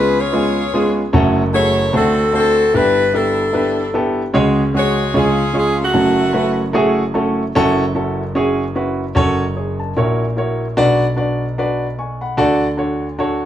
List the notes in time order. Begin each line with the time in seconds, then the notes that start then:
Already playing: C#2 C#3 G#3 B3 C#4 F4 G#4 B4
0.19 F4 G#4 C#5
0.32 G#3 B3 C#4 F4 G#4
0.74 G#3 B3 C#4 F4 G#4
1.13 F#1 F#2 A3 C#4 E4 F#4 A4
1.53 A3 C#4 E4 F#4 G#4 A4 C#5
1.93 D2 D3 A3 C4 D4 F#4 A4
2.33 A3 C4 D4 F#4 A4
2.74 G1 G2 B3 D4 E4 G4 B4
3.14 B3 D4 E4 G4 A4
3.53 B3 D4 E4 G4 B4
3.94 B3 D4 E4 G4 A4
4.34 C#2 C#3 G#3 C#4 F#4 G#4 C#5
4.74 G#3 C#4 F#4 G#4 C#5
5.14 C#2 C#3 G#3 C#4 F4 G#4 C#5
5.53 G#3 C#4 F4 G#4 C#5
5.58 G#4
5.80 A3 C#4 F#4
5.93 F#1 F#2 A3 C#4 E4 F#4 A4
6.33 A3 C#4 E4 F#4 B4
6.73 A3 C#4 E4 F#4 G#4
7.14 A3 C#4 E4 F#4 A4
7.55 F#1 F#2 C#4 E4 F#4 A4
7.95 C#4 E4 F#4 A4
8.35 C#4 E4 F#4 G#4
8.75 C#4 E4 F#4 B4
9.15 F#1 F#2 C#4 F#4 A4 C#5
9.56 G#4 C#5
9.80 A5
9.97 A#1 A#2 E4 F#4 A#4 C#5
10.37 E4 F#4 A#4 C#5
10.77 B1 B2 D4 F#4 B4 D5
11.16 D4 F#4 B4 D5
11.58 D4 F#4 B4 D5
11.99 G#5 C#6
12.21 F#5 B5
12.37 D2 D3 D4 F#4 A4 D5
12.77 D4 F#4 A4 C#5
13.19 D4 F#4 A4 C#5